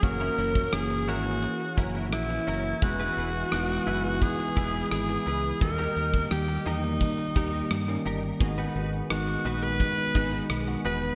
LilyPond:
<<
  \new Staff \with { instrumentName = "Alto saxophone" } { \time 4/4 \key gis \minor \tempo 4 = 86 ais'4 gis'8 fis'4 r8 e'4 | fis'2 gis'4 gis'4 | ais'4 g'8 dis'2 r8 | r4 fis'8. b'4~ b'16 r8 b'8 | }
  \new Staff \with { instrumentName = "Analog polysynth" } { \time 4/4 \key gis \minor <ais fis' cis''>1 | <gis e' b'>1 | <ais g' dis''>1 | <b gis' dis''>1 | }
  \new Staff \with { instrumentName = "Clean electric guitar" } { \time 4/4 \key gis \minor r16 <cis' e' ais'>16 <cis' e' ais'>16 r8. <cis' e' ais'>16 r8. <cis' e' ais'>16 <cis' e' ais'>16 r8 <cis' e' ais'>16 r16 | r16 <e' gis' b'>16 <e' gis' b'>16 r8. <e' gis' b'>16 r8. <e' gis' b'>16 <e' gis' b'>16 r8 <e' gis' b'>16 r16 | r16 <dis' g' ais'>16 <dis' g' ais'>16 r8. <dis' g' ais'>16 r8. <dis' g' ais'>16 <dis' g' ais'>16 r8 <dis' g' ais'>16 r16 | r16 <dis' fis' b'>16 <dis' fis' b'>16 r8. <dis' fis' b'>16 r8. <dis' fis' b'>16 <dis' fis' b'>16 r8 <dis' fis' b'>16 r16 | }
  \new Staff \with { instrumentName = "Tine electric piano" } { \time 4/4 \key gis \minor <e ais cis' fis'>8. r16 <e ais cis' gis'>8. <e ais cis' gis'>8. <e ais cis' fis'>8. <e ais cis' e'>8. | <e gis b gis'>8. r16 <e gis b dis'>8. <e gis b gis'>8. <e gis b gis'>8. <e gis b gis'>8. | <dis g ais fis' g'>8. r16 <dis g ais g'>8. <dis g ais dis'>8. <dis g ais g'>8. <dis g ais cis'>8. | <dis gis b fis'>8. r16 <dis gis b dis'>8. <dis gis b fis'>8. <dis gis b gis'>8. <dis gis b fis'>8. | }
  \new Staff \with { instrumentName = "Fingered electric bass" } { \clef bass \time 4/4 \key gis \minor fis,,8 fis,,8 fis,,8 gis,,8. r16 fis,,8 ais,,8 fis,,8 | e,,8 e,,8 e,,8 fis,,8. r16 e,,8 gis,,8 cis,8 | dis,8 dis,8 dis,8 e,8. r16 dis,8 g,8 g,,8 | gis,,8 gis,,8 gis,,8 ais,,8. r16 gis,,8 b,,8 e,,8 | }
  \new DrumStaff \with { instrumentName = "Drums" } \drummode { \time 4/4 <hh bd>16 hh16 hh16 <hh bd>16 <hh ss>16 hh16 hh16 hh16 hh16 hh16 <hh bd>16 hh16 <hh ss>16 hh16 hh16 hh16 | <hh bd>16 hh16 hh16 hh16 <hh ss>16 hh16 hh16 hh16 <hh bd>16 hh16 <hh bd>16 hh16 <hh ss>16 hh16 hh16 hh16 | <hh bd>16 hh16 hh16 <hh bd>16 <hh ss>16 hh16 hh16 hh16 <hh bd>16 hh16 <hh bd>16 hh16 <hh ss>16 hh16 hh16 hh16 | <hh bd>16 hh16 hh16 hh16 <hh ss>16 hh16 hh16 hh16 <hh bd>16 hh16 <hh bd>16 hh16 <hh ss>16 hh16 hh16 hh16 | }
>>